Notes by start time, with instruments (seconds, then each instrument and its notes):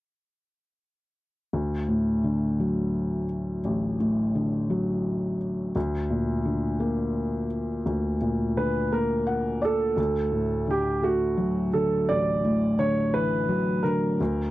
1.53 felt piano D2
1.88 felt piano A2
2.24 felt piano D3
2.60 felt piano F#3
3.65 felt piano A1
4.00 felt piano A2
4.35 felt piano D3
4.70 felt piano F#3
5.76 felt piano D2
6.10 felt piano A#2
6.45 felt piano D3
6.80 felt piano A#3
7.86 felt piano D2
8.21 felt piano A#2
8.57 felt piano D3, grand piano B4
8.92 felt piano A#3, grand piano A#4
9.27 felt piano F#5
9.62 grand piano A4, felt piano D5
9.97 felt piano D2
10.32 felt piano A2
10.67 felt piano D3, grand piano G4
11.03 felt piano A3, grand piano F#4
11.37 felt piano F#3
11.73 felt piano D3, grand piano A4
12.09 felt piano A1, grand piano D5
12.45 felt piano A2
12.79 felt piano D3, grand piano C#5
13.13 felt piano E3, grand piano B4
13.49 felt piano F#3
13.83 felt piano D3, grand piano A#4
14.20 felt piano D2